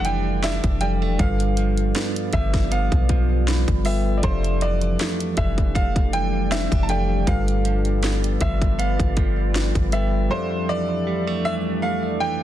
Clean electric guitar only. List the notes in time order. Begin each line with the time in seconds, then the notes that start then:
Already playing: F2 A3 D4
0.06 E3
0.44 D4
0.81 G3
1.02 A3
1.19 G2
1.57 F3
1.95 B3
2.33 F3
2.71 B3
3.10 F3
3.85 B3
4.23 F2 D4
4.62 E3
4.99 A3
5.38 E3
5.75 A3
6.13 E3
6.51 C4
6.72 D4
6.89 A3
7.27 G2
7.65 F3
8.03 B3
8.41 F3
8.79 B3
9.17 F3
9.93 B3
10.31 F2 D4
10.69 E3
11.07 G3
11.27 A3
11.45 E3
11.83 A3
12.21 E3